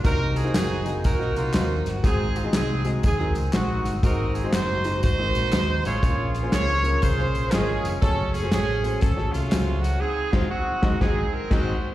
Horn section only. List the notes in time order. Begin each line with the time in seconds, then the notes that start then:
0.04 D#4 F#4 A#4
0.36 G#4
0.54 D#4 G#4
1.05 D#4 F#4 A#4
1.37 A#3 F4
1.86 F#4
2.05 C4 D#4 G#4
2.37 F4
2.55 C4 D#4 G#4
3.05 C4 D#4 G#4
3.54 C4 D#4 F#4
4.03 D#4 F#4 A#4
4.35 G#4
4.54 D#4 F#4 C5
5.03 D#4 F#4 C5
5.85 F4 G#4 C#5
6.52 F4 G#4 C#5
7.01 F4 G#4 C5
7.50 C#4 F4 G#4
8.01 C#4 A4
8.33 G#4
8.52 C#4 G#4
9.00 C#4 A4
9.32 G#3 A3 F4
9.81 F#4
9.99 C4 D#4 G#4
10.31 F4
10.50 C4 D#4 F#4
11.00 C4 D#4 G#4
11.32 A#4
11.51 D#4 F#4 C5